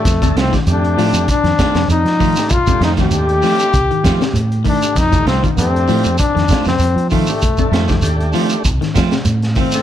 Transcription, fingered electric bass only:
X:1
M:4/4
L:1/16
Q:"Swing 16ths" 1/4=98
K:Fmix
V:1 name="Fingered electric bass" clef=bass
F,, E,, C,, z F,,2 A,, F,, z F,, z F,, F,, F,2 z | z2 F,,2 E,,2 z2 C,, z F, z A,,2 z2 | F,, E,, C,, z F,,2 A,, F,, z F,, z F,, F,, F,2 z | z2 F,,2 E,,2 z2 C,, z F, z A,,2 z2 |]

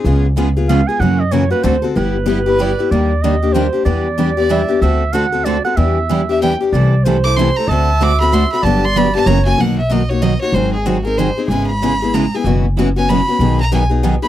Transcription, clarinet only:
X:1
M:3/4
L:1/16
Q:"Swing" 1/4=189
K:C#dor
V:1 name="Clarinet"
z8 ^e2 g2 | f2 d2 c2 B2 =c3 z | [K:G] B12 | d4 _e4 c4 |
d12 | e4 f4 d2 f2 | e8 z4 | d4 c8 |
e12 | d8 ^c4 | [K:B] z12 | z12 |
z12 | z12 | z12 |]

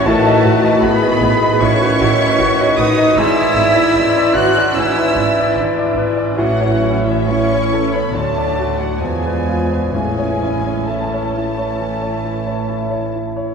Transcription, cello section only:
X:1
M:4/4
L:1/16
Q:1/4=72
K:A
V:1 name="Cello section"
A,4 B,4 C6 ^D2 | E6 F2 E4 z4 | F,3 E, C3 B, A,3 F, G,4 | G,4 A,8- A,2 z2 |]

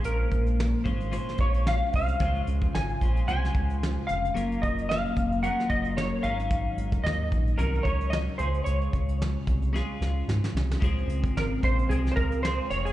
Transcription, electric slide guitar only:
X:1
M:4/4
L:1/16
Q:"Swing 16ths" 1/4=111
K:Db
V:1 name="Electric slide guitar"
B6 z4 d2 f2 f2- | f2 z2 a4 a6 f2- | f2 e2 f4 g2 e2 d2 f2- | f4 e4 B2 d2 e2 c2 |
d12- d2 z2 | z4 B2 c2 A3/2 c/2 B2 c2 d A |]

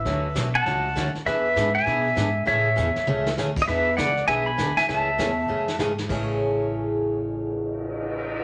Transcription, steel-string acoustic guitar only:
X:1
M:4/4
L:1/8
Q:"Swing" 1/4=199
K:A
V:1 name="Steel-string acoustic guitar"
[D,F,A,CF] z [D,F,A,CF] z [D,F,A,CF] z [D,F,A,CF] z | [E,B,DG] z [E,B,DG] z [E,B,DG] z [E,B,DG] z | [C,E,A,CG] z [C,E,A,CG] z [C,E,A,CG] z [C,E,A,CG] z | [E,B,DG] z [E,B,DG] z [E,B,DG] z [E,B,DG] z |
[C,E,A,CG] z [C,E,A,CG] z [C,E,A,CG] z [C,E,A,CG] z | [A,,C,E,A,CG]8- | [A,,C,E,A,CG]8 |]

